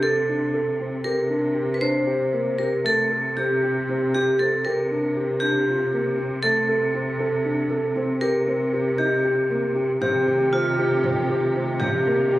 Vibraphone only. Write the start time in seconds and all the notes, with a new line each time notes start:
0.03 A4
1.04 A#4
1.74 B4
1.81 C5
2.58 A#4
2.86 A4
3.37 G4
4.14 G4
4.39 A4
4.65 A#4
5.40 G4
6.42 A4
8.21 A#4
8.98 G4
10.02 G4
10.53 F4
11.80 G4